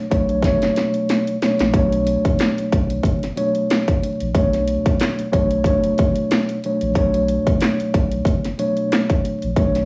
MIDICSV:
0, 0, Header, 1, 4, 480
1, 0, Start_track
1, 0, Key_signature, 2, "minor"
1, 0, Tempo, 652174
1, 1279, Time_signature, 4, 2, 24, 8
1, 7250, End_track
2, 0, Start_track
2, 0, Title_t, "Tine electric piano"
2, 0, Program_c, 0, 4
2, 71, Note_on_c, 0, 47, 85
2, 73, Note_on_c, 0, 54, 82
2, 75, Note_on_c, 0, 57, 90
2, 77, Note_on_c, 0, 62, 83
2, 78, Note_on_c, 0, 73, 106
2, 298, Note_off_c, 0, 47, 0
2, 299, Note_off_c, 0, 54, 0
2, 300, Note_off_c, 0, 57, 0
2, 301, Note_off_c, 0, 62, 0
2, 301, Note_off_c, 0, 73, 0
2, 326, Note_on_c, 0, 47, 87
2, 328, Note_on_c, 0, 54, 79
2, 330, Note_on_c, 0, 57, 88
2, 332, Note_on_c, 0, 62, 80
2, 334, Note_on_c, 0, 73, 108
2, 991, Note_off_c, 0, 47, 0
2, 992, Note_off_c, 0, 54, 0
2, 993, Note_off_c, 0, 57, 0
2, 994, Note_off_c, 0, 62, 0
2, 995, Note_off_c, 0, 73, 0
2, 1054, Note_on_c, 0, 47, 81
2, 1056, Note_on_c, 0, 54, 66
2, 1057, Note_on_c, 0, 57, 77
2, 1059, Note_on_c, 0, 62, 73
2, 1060, Note_on_c, 0, 73, 86
2, 1269, Note_off_c, 0, 47, 0
2, 1270, Note_off_c, 0, 54, 0
2, 1271, Note_off_c, 0, 57, 0
2, 1272, Note_off_c, 0, 62, 0
2, 1272, Note_off_c, 0, 73, 0
2, 1290, Note_on_c, 0, 47, 89
2, 1292, Note_on_c, 0, 54, 90
2, 1293, Note_on_c, 0, 57, 84
2, 1295, Note_on_c, 0, 62, 94
2, 1297, Note_on_c, 0, 73, 109
2, 2398, Note_off_c, 0, 47, 0
2, 2399, Note_off_c, 0, 54, 0
2, 2400, Note_off_c, 0, 57, 0
2, 2401, Note_off_c, 0, 62, 0
2, 2402, Note_off_c, 0, 73, 0
2, 2475, Note_on_c, 0, 47, 90
2, 2476, Note_on_c, 0, 54, 83
2, 2479, Note_on_c, 0, 57, 76
2, 2481, Note_on_c, 0, 62, 79
2, 2482, Note_on_c, 0, 73, 97
2, 3145, Note_off_c, 0, 47, 0
2, 3146, Note_off_c, 0, 54, 0
2, 3147, Note_off_c, 0, 57, 0
2, 3148, Note_off_c, 0, 62, 0
2, 3149, Note_off_c, 0, 73, 0
2, 3203, Note_on_c, 0, 47, 97
2, 3204, Note_on_c, 0, 54, 85
2, 3206, Note_on_c, 0, 57, 88
2, 3209, Note_on_c, 0, 62, 87
2, 3210, Note_on_c, 0, 73, 103
2, 3869, Note_off_c, 0, 47, 0
2, 3870, Note_off_c, 0, 54, 0
2, 3871, Note_off_c, 0, 57, 0
2, 3872, Note_off_c, 0, 62, 0
2, 3873, Note_off_c, 0, 73, 0
2, 3911, Note_on_c, 0, 47, 84
2, 3913, Note_on_c, 0, 54, 81
2, 3914, Note_on_c, 0, 57, 92
2, 3917, Note_on_c, 0, 62, 83
2, 3919, Note_on_c, 0, 73, 106
2, 4138, Note_off_c, 0, 47, 0
2, 4139, Note_off_c, 0, 54, 0
2, 4140, Note_off_c, 0, 57, 0
2, 4141, Note_off_c, 0, 62, 0
2, 4142, Note_off_c, 0, 73, 0
2, 4166, Note_on_c, 0, 47, 90
2, 4167, Note_on_c, 0, 54, 79
2, 4169, Note_on_c, 0, 57, 88
2, 4171, Note_on_c, 0, 62, 80
2, 4173, Note_on_c, 0, 73, 106
2, 4831, Note_off_c, 0, 47, 0
2, 4832, Note_off_c, 0, 54, 0
2, 4833, Note_off_c, 0, 57, 0
2, 4833, Note_off_c, 0, 62, 0
2, 4834, Note_off_c, 0, 73, 0
2, 4895, Note_on_c, 0, 47, 80
2, 4896, Note_on_c, 0, 54, 70
2, 4899, Note_on_c, 0, 57, 76
2, 4900, Note_on_c, 0, 62, 76
2, 4902, Note_on_c, 0, 73, 84
2, 5110, Note_off_c, 0, 47, 0
2, 5110, Note_off_c, 0, 54, 0
2, 5112, Note_off_c, 0, 57, 0
2, 5112, Note_off_c, 0, 62, 0
2, 5113, Note_off_c, 0, 73, 0
2, 5129, Note_on_c, 0, 47, 90
2, 5131, Note_on_c, 0, 54, 88
2, 5132, Note_on_c, 0, 57, 87
2, 5135, Note_on_c, 0, 62, 90
2, 5136, Note_on_c, 0, 73, 106
2, 6238, Note_off_c, 0, 47, 0
2, 6239, Note_off_c, 0, 54, 0
2, 6239, Note_off_c, 0, 57, 0
2, 6241, Note_off_c, 0, 62, 0
2, 6241, Note_off_c, 0, 73, 0
2, 6317, Note_on_c, 0, 47, 89
2, 6319, Note_on_c, 0, 54, 84
2, 6320, Note_on_c, 0, 57, 75
2, 6323, Note_on_c, 0, 62, 79
2, 6325, Note_on_c, 0, 73, 96
2, 6986, Note_off_c, 0, 47, 0
2, 6987, Note_off_c, 0, 54, 0
2, 6988, Note_off_c, 0, 57, 0
2, 6989, Note_off_c, 0, 62, 0
2, 6990, Note_off_c, 0, 73, 0
2, 7044, Note_on_c, 0, 47, 92
2, 7047, Note_on_c, 0, 54, 80
2, 7048, Note_on_c, 0, 57, 89
2, 7050, Note_on_c, 0, 62, 89
2, 7052, Note_on_c, 0, 73, 102
2, 7250, Note_off_c, 0, 47, 0
2, 7250, Note_off_c, 0, 54, 0
2, 7250, Note_off_c, 0, 57, 0
2, 7250, Note_off_c, 0, 62, 0
2, 7250, Note_off_c, 0, 73, 0
2, 7250, End_track
3, 0, Start_track
3, 0, Title_t, "Sub bass"
3, 0, Program_c, 1, 38
3, 87, Note_on_c, 1, 35, 89
3, 316, Note_on_c, 1, 30, 98
3, 327, Note_off_c, 1, 35, 0
3, 518, Note_off_c, 1, 30, 0
3, 1176, Note_on_c, 1, 34, 93
3, 1264, Note_off_c, 1, 34, 0
3, 1281, Note_on_c, 1, 35, 105
3, 1591, Note_off_c, 1, 35, 0
3, 2008, Note_on_c, 1, 35, 93
3, 2204, Note_off_c, 1, 35, 0
3, 2236, Note_on_c, 1, 30, 96
3, 2438, Note_off_c, 1, 30, 0
3, 3097, Note_on_c, 1, 34, 90
3, 3185, Note_off_c, 1, 34, 0
3, 3200, Note_on_c, 1, 35, 106
3, 3511, Note_off_c, 1, 35, 0
3, 3927, Note_on_c, 1, 35, 86
3, 4155, Note_on_c, 1, 30, 98
3, 4166, Note_off_c, 1, 35, 0
3, 4357, Note_off_c, 1, 30, 0
3, 5017, Note_on_c, 1, 34, 93
3, 5104, Note_off_c, 1, 34, 0
3, 5120, Note_on_c, 1, 35, 109
3, 5431, Note_off_c, 1, 35, 0
3, 5847, Note_on_c, 1, 35, 94
3, 6044, Note_off_c, 1, 35, 0
3, 6076, Note_on_c, 1, 30, 99
3, 6278, Note_off_c, 1, 30, 0
3, 6939, Note_on_c, 1, 34, 95
3, 7026, Note_off_c, 1, 34, 0
3, 7041, Note_on_c, 1, 35, 109
3, 7250, Note_off_c, 1, 35, 0
3, 7250, End_track
4, 0, Start_track
4, 0, Title_t, "Drums"
4, 84, Note_on_c, 9, 36, 100
4, 86, Note_on_c, 9, 42, 73
4, 157, Note_off_c, 9, 36, 0
4, 160, Note_off_c, 9, 42, 0
4, 213, Note_on_c, 9, 42, 48
4, 287, Note_off_c, 9, 42, 0
4, 312, Note_on_c, 9, 36, 90
4, 325, Note_on_c, 9, 42, 81
4, 329, Note_on_c, 9, 38, 57
4, 386, Note_off_c, 9, 36, 0
4, 398, Note_off_c, 9, 42, 0
4, 402, Note_off_c, 9, 38, 0
4, 455, Note_on_c, 9, 42, 51
4, 461, Note_on_c, 9, 38, 54
4, 529, Note_off_c, 9, 42, 0
4, 535, Note_off_c, 9, 38, 0
4, 561, Note_on_c, 9, 42, 78
4, 569, Note_on_c, 9, 38, 68
4, 635, Note_off_c, 9, 42, 0
4, 643, Note_off_c, 9, 38, 0
4, 691, Note_on_c, 9, 42, 51
4, 764, Note_off_c, 9, 42, 0
4, 803, Note_on_c, 9, 42, 99
4, 808, Note_on_c, 9, 38, 86
4, 877, Note_off_c, 9, 42, 0
4, 882, Note_off_c, 9, 38, 0
4, 937, Note_on_c, 9, 42, 59
4, 1011, Note_off_c, 9, 42, 0
4, 1046, Note_on_c, 9, 42, 58
4, 1048, Note_on_c, 9, 38, 98
4, 1119, Note_off_c, 9, 42, 0
4, 1122, Note_off_c, 9, 38, 0
4, 1173, Note_on_c, 9, 42, 57
4, 1181, Note_on_c, 9, 38, 89
4, 1246, Note_off_c, 9, 42, 0
4, 1254, Note_off_c, 9, 38, 0
4, 1277, Note_on_c, 9, 36, 114
4, 1280, Note_on_c, 9, 42, 93
4, 1351, Note_off_c, 9, 36, 0
4, 1353, Note_off_c, 9, 42, 0
4, 1416, Note_on_c, 9, 42, 56
4, 1490, Note_off_c, 9, 42, 0
4, 1521, Note_on_c, 9, 42, 81
4, 1594, Note_off_c, 9, 42, 0
4, 1655, Note_on_c, 9, 36, 94
4, 1658, Note_on_c, 9, 42, 60
4, 1729, Note_off_c, 9, 36, 0
4, 1732, Note_off_c, 9, 42, 0
4, 1758, Note_on_c, 9, 42, 94
4, 1769, Note_on_c, 9, 38, 107
4, 1774, Note_on_c, 9, 39, 86
4, 1832, Note_off_c, 9, 42, 0
4, 1843, Note_off_c, 9, 38, 0
4, 1848, Note_off_c, 9, 39, 0
4, 1900, Note_on_c, 9, 42, 62
4, 1974, Note_off_c, 9, 42, 0
4, 2005, Note_on_c, 9, 36, 103
4, 2008, Note_on_c, 9, 42, 73
4, 2078, Note_off_c, 9, 36, 0
4, 2081, Note_off_c, 9, 42, 0
4, 2135, Note_on_c, 9, 42, 49
4, 2208, Note_off_c, 9, 42, 0
4, 2233, Note_on_c, 9, 36, 85
4, 2245, Note_on_c, 9, 42, 78
4, 2306, Note_off_c, 9, 36, 0
4, 2319, Note_off_c, 9, 42, 0
4, 2377, Note_on_c, 9, 42, 50
4, 2383, Note_on_c, 9, 38, 36
4, 2451, Note_off_c, 9, 42, 0
4, 2456, Note_off_c, 9, 38, 0
4, 2483, Note_on_c, 9, 42, 82
4, 2556, Note_off_c, 9, 42, 0
4, 2611, Note_on_c, 9, 42, 50
4, 2685, Note_off_c, 9, 42, 0
4, 2725, Note_on_c, 9, 42, 97
4, 2730, Note_on_c, 9, 38, 118
4, 2735, Note_on_c, 9, 39, 91
4, 2799, Note_off_c, 9, 42, 0
4, 2804, Note_off_c, 9, 38, 0
4, 2809, Note_off_c, 9, 39, 0
4, 2855, Note_on_c, 9, 36, 100
4, 2858, Note_on_c, 9, 42, 58
4, 2928, Note_off_c, 9, 36, 0
4, 2931, Note_off_c, 9, 42, 0
4, 2969, Note_on_c, 9, 42, 61
4, 3043, Note_off_c, 9, 42, 0
4, 3094, Note_on_c, 9, 42, 55
4, 3167, Note_off_c, 9, 42, 0
4, 3198, Note_on_c, 9, 36, 114
4, 3201, Note_on_c, 9, 42, 92
4, 3272, Note_off_c, 9, 36, 0
4, 3275, Note_off_c, 9, 42, 0
4, 3337, Note_on_c, 9, 42, 57
4, 3342, Note_on_c, 9, 38, 33
4, 3410, Note_off_c, 9, 42, 0
4, 3416, Note_off_c, 9, 38, 0
4, 3441, Note_on_c, 9, 42, 82
4, 3515, Note_off_c, 9, 42, 0
4, 3575, Note_on_c, 9, 36, 93
4, 3577, Note_on_c, 9, 42, 59
4, 3649, Note_off_c, 9, 36, 0
4, 3650, Note_off_c, 9, 42, 0
4, 3677, Note_on_c, 9, 42, 94
4, 3688, Note_on_c, 9, 38, 107
4, 3693, Note_on_c, 9, 39, 86
4, 3751, Note_off_c, 9, 42, 0
4, 3762, Note_off_c, 9, 38, 0
4, 3767, Note_off_c, 9, 39, 0
4, 3818, Note_on_c, 9, 42, 59
4, 3891, Note_off_c, 9, 42, 0
4, 3924, Note_on_c, 9, 36, 105
4, 3925, Note_on_c, 9, 42, 75
4, 3998, Note_off_c, 9, 36, 0
4, 3999, Note_off_c, 9, 42, 0
4, 4052, Note_on_c, 9, 42, 49
4, 4126, Note_off_c, 9, 42, 0
4, 4152, Note_on_c, 9, 36, 88
4, 4164, Note_on_c, 9, 42, 78
4, 4226, Note_off_c, 9, 36, 0
4, 4238, Note_off_c, 9, 42, 0
4, 4295, Note_on_c, 9, 42, 51
4, 4368, Note_off_c, 9, 42, 0
4, 4400, Note_on_c, 9, 42, 77
4, 4407, Note_on_c, 9, 36, 94
4, 4474, Note_off_c, 9, 42, 0
4, 4481, Note_off_c, 9, 36, 0
4, 4530, Note_on_c, 9, 42, 51
4, 4604, Note_off_c, 9, 42, 0
4, 4643, Note_on_c, 9, 42, 97
4, 4648, Note_on_c, 9, 38, 117
4, 4653, Note_on_c, 9, 39, 93
4, 4717, Note_off_c, 9, 42, 0
4, 4722, Note_off_c, 9, 38, 0
4, 4727, Note_off_c, 9, 39, 0
4, 4776, Note_on_c, 9, 42, 58
4, 4849, Note_off_c, 9, 42, 0
4, 4885, Note_on_c, 9, 42, 57
4, 4959, Note_off_c, 9, 42, 0
4, 5013, Note_on_c, 9, 42, 55
4, 5086, Note_off_c, 9, 42, 0
4, 5117, Note_on_c, 9, 36, 117
4, 5120, Note_on_c, 9, 42, 95
4, 5191, Note_off_c, 9, 36, 0
4, 5194, Note_off_c, 9, 42, 0
4, 5255, Note_on_c, 9, 42, 56
4, 5329, Note_off_c, 9, 42, 0
4, 5361, Note_on_c, 9, 42, 82
4, 5434, Note_off_c, 9, 42, 0
4, 5495, Note_on_c, 9, 36, 92
4, 5497, Note_on_c, 9, 42, 60
4, 5569, Note_off_c, 9, 36, 0
4, 5571, Note_off_c, 9, 42, 0
4, 5597, Note_on_c, 9, 42, 95
4, 5608, Note_on_c, 9, 38, 108
4, 5613, Note_on_c, 9, 39, 90
4, 5671, Note_off_c, 9, 42, 0
4, 5682, Note_off_c, 9, 38, 0
4, 5687, Note_off_c, 9, 39, 0
4, 5740, Note_on_c, 9, 42, 61
4, 5813, Note_off_c, 9, 42, 0
4, 5844, Note_on_c, 9, 36, 104
4, 5847, Note_on_c, 9, 42, 76
4, 5918, Note_off_c, 9, 36, 0
4, 5920, Note_off_c, 9, 42, 0
4, 5973, Note_on_c, 9, 42, 49
4, 6046, Note_off_c, 9, 42, 0
4, 6072, Note_on_c, 9, 36, 88
4, 6084, Note_on_c, 9, 42, 81
4, 6146, Note_off_c, 9, 36, 0
4, 6158, Note_off_c, 9, 42, 0
4, 6215, Note_on_c, 9, 42, 51
4, 6221, Note_on_c, 9, 38, 37
4, 6289, Note_off_c, 9, 42, 0
4, 6294, Note_off_c, 9, 38, 0
4, 6322, Note_on_c, 9, 42, 79
4, 6395, Note_off_c, 9, 42, 0
4, 6452, Note_on_c, 9, 42, 52
4, 6526, Note_off_c, 9, 42, 0
4, 6565, Note_on_c, 9, 42, 102
4, 6570, Note_on_c, 9, 38, 118
4, 6575, Note_on_c, 9, 39, 92
4, 6638, Note_off_c, 9, 42, 0
4, 6644, Note_off_c, 9, 38, 0
4, 6649, Note_off_c, 9, 39, 0
4, 6695, Note_on_c, 9, 36, 97
4, 6698, Note_on_c, 9, 42, 59
4, 6768, Note_off_c, 9, 36, 0
4, 6772, Note_off_c, 9, 42, 0
4, 6807, Note_on_c, 9, 42, 58
4, 6881, Note_off_c, 9, 42, 0
4, 6934, Note_on_c, 9, 42, 55
4, 7008, Note_off_c, 9, 42, 0
4, 7039, Note_on_c, 9, 36, 120
4, 7041, Note_on_c, 9, 42, 96
4, 7112, Note_off_c, 9, 36, 0
4, 7115, Note_off_c, 9, 42, 0
4, 7177, Note_on_c, 9, 42, 55
4, 7182, Note_on_c, 9, 38, 33
4, 7250, Note_off_c, 9, 38, 0
4, 7250, Note_off_c, 9, 42, 0
4, 7250, End_track
0, 0, End_of_file